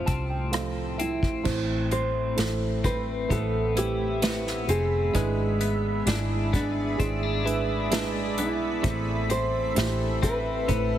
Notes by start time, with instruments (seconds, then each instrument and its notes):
Already playing: clean electric guitar A2 F3 A3 F4, upright piano A3 C4 F4 A4 C5, nylon-string guitar C4
0.06 fingered electric bass C2, clean electric guitar C4, upright piano A5, kick, closed hi-hat
0.30 upright piano G5
0.51 upright piano F3 A3 C4 A4 F5, cross-stick, closed hi-hat
0.98 clean electric guitar C4, nylon-string guitar E4, upright piano E5, closed hi-hat
1.23 kick
1.43 fingered electric bass A1, upright piano A2 E3 A3 C4 E4 C5, clean electric guitar A2, ambient pad A3 E5 B5, kick, crash
1.91 clean electric guitar C4, nylon-string guitar C5, closed hi-hat
2.35 fingered electric bass A1, upright piano A3 C4 E4 A4, snare, closed hi-hat
2.84 clean electric guitar C4, nylon-string guitar B4, kick, closed hi-hat
3.28 fingered electric bass A1, upright piano A3 C4 E4 B4, clean electric guitar B3, nylon-string guitar A4, kick, closed hi-hat
3.75 upright piano A3 C4 E4 B4, clean electric guitar E4, nylon-string guitar G4, closed hi-hat
4.21 upright piano A3 C4 E4 B4, clean electric guitar B3, snare, closed hi-hat
4.47 snare
4.68 fingered electric bass F1, clean electric guitar C4, nylon-string guitar G#4, closed hi-hat
5.13 fingered electric bass G#1, upright piano G#2 G#3 D4 E4 B4, clean electric guitar G#3, ambient pad G#4 D5, kick, closed hi-hat
5.61 clean electric guitar B3, closed hi-hat
6.05 fingered electric bass G#1, upright piano G#3 D4 E4 G#4, clean electric guitar D4, nylon-string guitar E4, snare, closed hi-hat
6.53 clean electric guitar B3, nylon-string guitar D4, kick, closed hi-hat
6.97 fingered electric bass G#1, upright piano G#3 D4 E4 G#4, clean electric guitar C4, kick, closed hi-hat
7.23 clean electric guitar D4
7.44 upright piano G#3 D4 E4 B4, clean electric guitar E4, closed hi-hat
7.90 upright piano G#3 D4 E4 B4, clean electric guitar D4, snare, closed hi-hat
8.38 fingered electric bass B1, clean electric guitar B3, nylon-string guitar E4, closed hi-hat
8.82 fingered electric bass A1, upright piano A2 E3 A3 C4 E4 C5, clean electric guitar A2, ambient pad A4, kick, closed hi-hat
9.30 clean electric guitar C4, nylon-string guitar C5, closed hi-hat
9.75 fingered electric bass A1, upright piano A3 C4 E4 G4, snare, closed hi-hat
10.22 clean electric guitar C4, nylon-string guitar B4, kick, closed hi-hat
10.68 fingered electric bass A1, upright piano A3 C4 E4 B4, clean electric guitar B3, kick, closed hi-hat